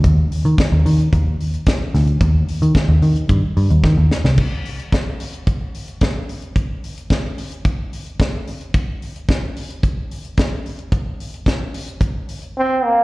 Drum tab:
CC |----------------|----------------|x---------------|----------------|
HH |x-oxx-oxx-oxx-ox|x-oxx-oxx-ox----|--oxx-oxx-oxx-ox|x-oxx-oxx-oxx-ox|
SD |----o-------o-o-|----o-------o-oo|----o-------o---|----o-------o---|
BD |o---o---o---o---|o---o---o---o---|o---o---o---o---|o---o---o---o---|

CC |----------------|----------------|
HH |x-oxx-oxx-oxx-ox|x-oxx-oxx-ox----|
SD |----o-------o---|----o-----------|
BD |o---o---o---o---|o---o---o-------|